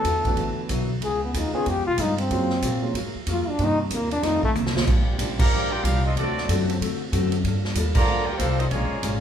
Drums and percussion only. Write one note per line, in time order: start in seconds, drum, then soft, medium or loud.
0.05 kick soft
0.05 hi-hat pedal medium
0.05 ride medium
0.25 kick medium
0.25 ride medium
0.37 kick soft
0.37 ride medium
0.69 kick soft
0.69 hi-hat pedal medium
0.69 ride medium
1.02 kick soft
1.02 ride medium
1.34 kick soft
1.34 hi-hat pedal medium
1.34 ride medium
1.66 kick soft
1.66 ride medium
1.98 kick soft
1.98 hi-hat pedal medium
1.98 ride medium
2.18 ride medium
2.30 kick soft
2.30 ride medium
2.50 snare soft
2.62 kick soft
2.62 hi-hat pedal medium
2.62 ride medium
2.95 kick soft
2.95 ride medium
3.27 kick soft
3.27 hi-hat pedal medium
3.27 ride medium
3.59 kick soft
3.59 ride medium
3.91 kick soft
3.91 hi-hat pedal medium
3.91 ride medium
4.11 ride medium
4.23 kick soft
4.23 snare soft
4.23 ride medium
4.43 kick medium
4.55 hi-hat pedal medium
4.55 high tom medium
4.66 snare medium
4.77 snare loud
4.87 kick medium
4.87 crash medium
5.19 kick soft
5.19 hi-hat pedal medium
5.19 ride medium
5.39 kick loud
5.39 crash loud
5.84 kick soft
5.84 hi-hat pedal medium
5.84 ride medium
6.17 kick soft
6.17 ride medium
6.38 snare soft
6.49 kick soft
6.49 hi-hat pedal medium
6.49 ride loud
6.70 ride medium
6.81 kick soft
6.81 ride medium
7.12 kick soft
7.12 hi-hat pedal medium
7.12 ride medium
7.32 ride medium
7.44 kick soft
7.44 ride medium
7.65 snare medium
7.75 kick soft
7.75 hi-hat pedal medium
7.75 ride medium
7.95 kick loud
7.95 crash loud
8.39 kick soft
8.39 hi-hat pedal medium
8.39 ride medium
8.60 ride medium
8.71 kick soft
8.71 ride medium
9.03 kick soft
9.03 hi-hat pedal medium
9.03 ride medium